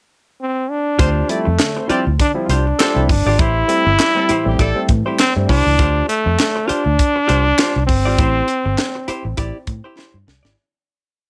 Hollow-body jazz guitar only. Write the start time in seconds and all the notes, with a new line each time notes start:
0.99 F4 G4 C5
1.45 muted hollow-body jazz guitar stroke
1.59 muted hollow-body jazz guitar stroke
1.77 muted hollow-body jazz guitar stroke
1.89 F4 G4 C5
2.07 muted hollow-body jazz guitar stroke
2.20 muted hollow-body jazz guitar stroke
2.50 F4 G4 C5
2.67 muted hollow-body jazz guitar stroke
2.80 F4 G4 C5
3.09 muted hollow-body jazz guitar stroke
3.27 F4 G4 D5
3.40 E4 G4 C5
3.86 muted hollow-body jazz guitar stroke
4.00 muted hollow-body jazz guitar stroke
4.17 muted hollow-body jazz guitar stroke
4.29 E4 G4 C5
4.46 muted hollow-body jazz guitar stroke
4.59 E4 G4 D5
4.89 muted hollow-body jazz guitar stroke
5.06 E4 G4 C5
5.49 E4 G4 C5
5.67 muted hollow-body jazz guitar stroke
5.80 F4 G4 C5
6.27 muted hollow-body jazz guitar stroke
6.40 muted hollow-body jazz guitar stroke
6.56 muted hollow-body jazz guitar stroke
6.68 F4 G4 C5
6.85 muted hollow-body jazz guitar stroke
7.16 muted hollow-body jazz guitar stroke
7.28 F4 G4 C5
7.45 muted hollow-body jazz guitar stroke
7.58 F4 G4 C5
7.88 muted hollow-body jazz guitar stroke
8.05 F4 G4 D5
8.19 E4 G4 C5
8.65 muted hollow-body jazz guitar stroke
8.79 muted hollow-body jazz guitar stroke
8.95 muted hollow-body jazz guitar stroke
9.08 E4 G4 C5
9.25 muted hollow-body jazz guitar stroke
9.37 E4 G4 D5
9.68 muted hollow-body jazz guitar stroke
9.84 E4 G4 C5
9.97 E4 G4 C5
10.27 muted hollow-body jazz guitar stroke
10.43 E4 G4 D5